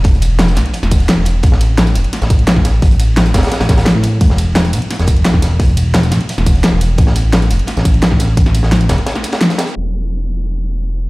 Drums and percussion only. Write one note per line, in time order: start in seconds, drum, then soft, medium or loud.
0.04 kick loud
0.04 closed hi-hat medium
0.04 closed hi-hat loud
0.14 closed hi-hat soft
0.22 closed hi-hat medium
0.22 ride bell medium
0.22 tambourine medium
0.39 snare loud
0.39 closed hi-hat medium
0.48 closed hi-hat soft
0.48 tambourine soft
0.55 snare soft
0.55 closed hi-hat medium
0.55 open hi-hat medium
0.55 ride bell medium
0.55 tambourine medium
0.66 closed hi-hat soft
0.74 closed hi-hat medium
0.83 snare soft
0.83 tambourine soft
0.91 kick loud
0.91 closed hi-hat medium
0.91 open hi-hat medium
0.91 ride bell medium
0.91 tambourine medium
1.00 closed hi-hat soft
1.08 snare loud
1.08 closed hi-hat medium
1.25 closed hi-hat medium
1.25 open hi-hat medium
1.25 ride bell medium
1.25 tambourine medium
1.43 kick loud
1.43 closed hi-hat loud
1.52 snare medium
1.61 closed hi-hat medium
1.61 ride bell medium
1.61 tambourine medium
1.78 snare loud
1.78 closed hi-hat medium
1.87 closed hi-hat soft
1.87 tambourine soft
1.95 closed hi-hat medium
1.95 open hi-hat medium
1.95 ride bell medium
1.95 tambourine medium
2.04 closed hi-hat soft
2.13 snare soft
2.13 closed hi-hat medium
2.22 snare soft
2.22 tambourine soft
2.30 kick loud
2.30 closed hi-hat medium
2.30 ride bell medium
2.30 tambourine medium
2.39 closed hi-hat soft
2.47 snare loud
2.47 closed hi-hat loud
2.47 closed hi-hat medium
2.56 kick medium
2.56 snare soft
2.65 snare medium
2.65 closed hi-hat medium
2.65 open hi-hat medium
2.65 ride bell medium
2.65 tambourine medium
2.82 kick loud
2.82 closed hi-hat medium
2.91 closed hi-hat soft
2.91 tambourine soft
3.00 closed hi-hat medium
3.00 ride bell medium
3.00 tambourine medium
3.16 snare loud
3.16 closed hi-hat medium
3.26 closed hi-hat soft
3.26 tambourine soft
3.34 kick medium
3.34 snare medium
3.34 snare soft
3.34 closed hi-hat medium
3.34 open hi-hat medium
3.34 ride bell medium
3.34 tambourine medium
3.38 snare loud
3.38 closed hi-hat medium
3.43 snare medium
3.43 closed hi-hat medium
3.43 closed hi-hat soft
3.47 snare medium
3.47 closed hi-hat medium
3.51 snare loud
3.51 closed hi-hat medium
3.60 snare loud
3.60 snare soft
3.60 closed hi-hat medium
3.60 tambourine soft
3.69 kick loud
3.69 snare loud
3.69 closed hi-hat medium
3.69 ride bell medium
3.69 tambourine medium
3.78 snare loud
3.78 closed hi-hat soft
3.78 closed hi-hat medium
3.85 snare loud
3.85 closed hi-hat medium
4.03 closed hi-hat medium
4.03 open hi-hat medium
4.03 ride bell medium
4.03 tambourine medium
4.21 kick loud
4.21 closed hi-hat medium
4.30 snare medium
4.38 closed hi-hat medium
4.38 ride bell medium
4.38 tambourine medium
4.55 snare loud
4.55 closed hi-hat medium
4.65 closed hi-hat soft
4.65 tambourine soft
4.73 closed hi-hat medium
4.73 open hi-hat medium
4.73 ride bell medium
4.73 tambourine medium
4.82 closed hi-hat soft
4.90 snare soft
4.90 closed hi-hat medium
4.90 closed hi-hat loud
4.99 snare soft
4.99 tambourine soft
5.07 kick loud
5.07 closed hi-hat medium
5.07 ride bell medium
5.07 tambourine medium
5.17 closed hi-hat soft
5.25 snare loud
5.25 closed hi-hat medium
5.34 kick medium
5.34 snare soft
5.42 snare soft
5.42 closed hi-hat medium
5.42 open hi-hat medium
5.42 ride bell medium
5.42 tambourine medium
5.60 kick loud
5.60 closed hi-hat loud
5.60 closed hi-hat medium
5.68 closed hi-hat soft
5.77 closed hi-hat medium
5.77 ride bell medium
5.77 tambourine medium
5.94 snare loud
5.94 closed hi-hat medium
6.03 closed hi-hat soft
6.03 tambourine soft
6.11 snare soft
6.11 closed hi-hat medium
6.11 open hi-hat medium
6.11 ride bell medium
6.11 tambourine medium
6.21 closed hi-hat soft
6.29 closed hi-hat loud
6.29 closed hi-hat medium
6.38 snare soft
6.38 tambourine soft
6.46 kick loud
6.46 closed hi-hat medium
6.46 open hi-hat medium
6.46 ride bell medium
6.46 tambourine medium
6.55 closed hi-hat soft
6.64 snare loud
6.64 closed hi-hat loud
6.64 closed hi-hat medium
6.81 closed hi-hat medium
6.81 open hi-hat medium
6.81 ride bell medium
6.81 tambourine medium
6.98 kick loud
6.98 closed hi-hat medium
6.98 closed hi-hat loud
7.07 snare medium
7.16 closed hi-hat medium
7.16 ride bell medium
7.16 tambourine medium
7.33 snare loud
7.33 closed hi-hat medium
7.33 closed hi-hat loud
7.42 closed hi-hat soft
7.42 tambourine soft
7.51 closed hi-hat medium
7.51 open hi-hat medium
7.51 ride bell medium
7.51 tambourine medium
7.59 closed hi-hat soft
7.67 snare soft
7.67 closed hi-hat medium
7.67 closed hi-hat loud
7.77 snare medium
7.77 tambourine soft
7.85 kick loud
7.85 closed hi-hat medium
7.85 ride bell medium
7.85 tambourine medium
7.94 closed hi-hat soft
8.03 snare loud
8.03 closed hi-hat loud
8.03 closed hi-hat medium
8.11 kick medium
8.11 snare soft
8.20 snare medium
8.20 closed hi-hat medium
8.20 open hi-hat medium
8.20 ride bell medium
8.20 tambourine medium
8.37 kick loud
8.37 closed hi-hat medium
8.37 closed hi-hat loud
8.46 snare medium
8.46 closed hi-hat soft
8.46 tambourine soft
8.55 closed hi-hat medium
8.55 ride bell medium
8.55 tambourine medium
8.63 snare medium
8.72 snare loud
8.72 closed hi-hat loud
8.72 closed hi-hat medium
8.81 closed hi-hat soft
8.81 tambourine soft
8.89 kick medium
8.89 snare loud
8.89 snare soft
8.89 closed hi-hat medium
8.89 open hi-hat medium
8.89 ride bell medium
8.89 tambourine medium
8.98 closed hi-hat soft
9.06 snare loud
9.06 closed hi-hat loud
9.06 closed hi-hat medium
9.15 snare soft
9.15 tambourine soft
9.23 snare soft
9.23 closed hi-hat medium
9.23 ride bell medium
9.23 tambourine medium
9.32 snare medium
9.32 snare soft
9.32 closed hi-hat medium
9.32 closed hi-hat soft
9.41 snare loud
9.41 closed hi-hat loud
9.50 snare soft
9.50 closed hi-hat medium
9.50 tambourine soft
9.58 snare loud
9.58 closed hi-hat medium
9.58 open hi-hat medium
9.58 ride bell medium
9.58 tambourine medium
9.67 closed hi-hat soft
9.76 closed hi-hat medium
9.76 crash medium
10.11 closed hi-hat medium
10.28 closed hi-hat medium
10.37 closed hi-hat soft
10.45 closed hi-hat medium
10.63 closed hi-hat medium
10.72 closed hi-hat soft
10.80 closed hi-hat medium
10.97 closed hi-hat medium